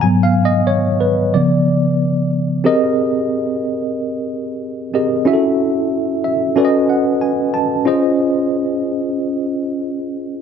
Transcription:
\new Staff \with { instrumentName = "Tine electric piano" } { \time 4/4 \key cis \mixolydian \tempo 4 = 92 << { \tuplet 3/2 { gis''8 eis''8 dis''8 } cis''8 b'8 d''8 r4. | \key des \lydian r1 | r4. fes''8 aes''8 fis''8 aes''8 a''8 | r1 | } \\ { <gis, fis b>2 <cis eis b>2 | <c' g' aes' bes' ees''>2.~ <c' g' aes' bes' ees''>8 <c' g' aes' bes' ees''>8 | <des' fes' ges' aes' a' fes''>2 <cis' fis' a' b' d'' dis''>2 | <des' f' aes' c'' ees''>1 | } >> }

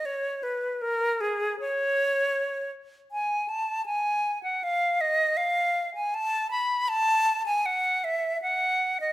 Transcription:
\new Staff \with { instrumentName = "Flute" } { \time 4/4 \key cis \dorian \tempo 4 = 79 cis''8 b'8 ais'8 gis'8 cis''4. r8 | \key a \lydian gis''8 a''8 gis''8. fis''16 f''8 dis''8 f''8. gis''16 | a''8 b''8 a''8. gis''16 fis''8 e''8 fis''8. dis''16 | }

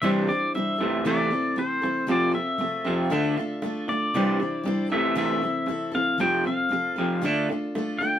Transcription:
<<
  \new Staff \with { instrumentName = "Pedal steel guitar" } { \time 4/4 \key c \major \tempo 4 = 117 e''8 d''8 e''4 d''4 c''4 | d''8 e''2. d''8~ | d''4. e''8 e''4. f''8 | g''8 f''2 r4 g''8 | }
  \new Staff \with { instrumentName = "Steel-string acoustic guitar" } { \time 4/4 \key c \major <c e g d' e' c''>8 <g d' e' c''>8 <g d' e' c''>8 <a c' e' a'>8 <c e a c' e' a'>8 <a c' e' a'>8 <a c' e' a'>8 <a c' e' a'>8 | <f a c' f' a'>8 <c' f' a'>8 <a c' f' a'>8 <c' f' a'>8 <d a d' f' a'>8 <d' f' a'>8 <a d' f' a'>8 <d' f' a'>8 | <c e g d' e' c''>8 <g d' e' c''>8 <g d' e' c''>8 <a c' e' a'>8 <c e a c' e' a'>8 <a c' e' a'>8 <a c' e' a'>8 <a c' e' a'>8 | <f a c' f' a'>8 <c' f' a'>8 <a c' f' a'>8 <c' f' a'>8 <d a d' f' a'>8 <d' f' a'>8 <a d' f' a'>8 <d' f' a'>8 | }
  \new Staff \with { instrumentName = "Clean electric guitar" } { \clef bass \time 4/4 \key c \major <c e g>8 <c e>8 <c e>8 <c e a>8 <c e a>8 <c e>8 <c e>8 <c e>8 | <f, c f>8 <f, c>8 <f, c>8 <f, c f>8 <d a d'>8 <d a>8 <d a>8 <d a>8 | <c e g>8 <c e>8 <c e>8 <c e a>8 <c e a>8 <c e>8 <c e>8 <c e>8 | <f, c f>8 <f, c>8 <f, c>8 <f, c f>8 <d a d'>8 <d a>8 <d a>8 <d a>8 | }
>>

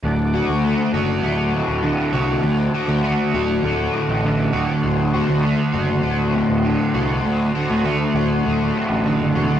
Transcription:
<<
  \new Staff \with { instrumentName = "Transistor combo organ" } { \time 4/4 \key d \mixolydian \tempo 4 = 100 << { d'''1~ | d'''1 | c'''1~ | c'''1 | } \\ { <a' fis''>1~ | <a' fis''>1~ | <a' fis''>1~ | <a' fis''>1 | } >> }
  \new Staff \with { instrumentName = "Overdriven electric guitar" } { \time 4/4 \key d \mixolydian d,8 fis'8 a8 fis'8 a8 a,8 d8 fis'8 | d,8 fis'8 a8 fis'8 a8 a,8 d8 fis'8 | d,8 fis'8 a8 fis'8 a8 a,8 d8 fis'8 | d,8 fis'8 a8 fis'8 a8 a,8 d8 fis'8 | }
  \new Staff \with { instrumentName = "Picked electric bass" } { \clef bass \time 4/4 \key d \mixolydian d,,8. d,8 r16 fis,,8 d,,8. d,,8 r16 c,8 | d,8 r16 d,8 r16 d,,8 d,,8 r16 a,,8. d,,16 r16 | d,,8. d,8 r16 fis,,8 d,,8. d,,8 r16 c,8 | d,8 r16 d,8 r16 d,,8 d,,8 r16 a,,8 fis,,16 e,,16 d,,16 | }
>>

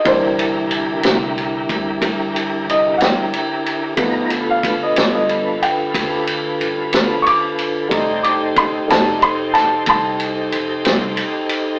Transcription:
<<
  \new Staff \with { instrumentName = "Upright piano" } { \time 12/8 \key g \dorian \tempo 4. = 61 c''2. r4 ees''8 <fis'' g''>4.~ | <fis'' g''>8. f''8 ees''8 ees''8. g''2 r8 <des''' d'''>4 | r8 d'''8 c'''8 a''8 c'''8 a''8 <a'' c'''>8 r2 r8 | }
  \new Staff \with { instrumentName = "Upright piano" } { \time 12/8 \key g \dorian <e bes d'>4. r1 r8 | <f a b>1. | <g a ees'>4. <g a ees'>8 r1 | }
  \new Staff \with { instrumentName = "Tonewheel organ" } { \time 12/8 \key g \dorian <d e' g' bes'>1. | <ees' f' b' bes''>8 <d f' a' b'>1~ <d f' a' b'>4. | <ees' g' a' c''>1. | }
  \new Staff \with { instrumentName = "Upright bass" } { \clef bass \time 12/8 \key g \dorian c,4. c,4 c,8 g,4 c,8 g,8 r4 | g,,4. g,,4 g,,8 d,4 g,,8 d,8 r4 | f,,4. f,,4 f,,8 c,4 f,,8 c,8 r4 | }
  \new DrumStaff \with { instrumentName = "Drums" } \drummode { \time 12/8 <bd cymr>8 cymr8 cymr8 <cymr sn>8 cymr8 <bd cymr>8 <bd cymr>8 cymr8 cymr8 <cymr sn>8 cymr8 cymr8 | <bd cymr>8 cymr8 <bd cymr>8 <cymr sn>8 cymr8 cymr8 <bd cymr>8 cymr8 cymr8 <cymr sn>8 cymr8 cymr8 | <bd cymr>8 cymr8 <bd cymr>8 <cymr sn>8 cymr8 <cymr sn>8 <bd cymr>8 cymr8 cymr8 <cymr sn>8 cymr8 cymr8 | }
>>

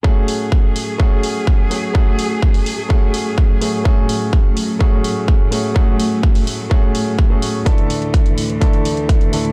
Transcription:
<<
  \new Staff \with { instrumentName = "Grand piano" } { \time 4/4 \key fis \minor \tempo 4 = 126 <a cis' fis' gis'>2 <a cis' fis' gis'>4. <a cis' fis' gis'>8 | <a cis' fis' gis'>2 <a cis' fis' gis'>4. <a cis' fis' gis'>8 | <a cis' fis' gis'>2 <a cis' fis' gis'>4. <a cis' fis' gis'>8 | <a cis' fis' gis'>2 <a cis' fis' gis'>4~ <a cis' fis' gis'>16 <a cis' fis' gis'>8. |
<d a d' e' a'>2 <d a d' e' a'>4. <d a d' e' a'>8 | }
  \new Staff \with { instrumentName = "String section" } { \clef bass \time 4/4 \key fis \minor << { gis'1~ | gis'1 | a1~ | a1 |
e1 | } \\ { <a, fis>1~ | <a, fis>1~ | <a, fis>1~ | <a, fis>1 |
d,1 | } >> }
  \new DrumStaff \with { instrumentName = "Drums" } \drummode { \time 4/4 bd8 hho8 bd8 hho8 bd8 hho8 bd8 hho8 | bd8 hho8 bd16 hho16 hho8 bd8 hho8 bd8 hho8 | bd8 hho8 bd8 hho8 bd8 hho8 bd8 hho8 | bd8 hho8 bd16 hho16 hho8 bd8 hho8 bd8 hho8 |
<hh bd>16 hh16 hho16 hh16 <hh bd>16 hh16 hho16 hh16 <hh bd>16 hh16 hho16 hh16 <hh bd>16 hh16 hho16 hh16 | }
>>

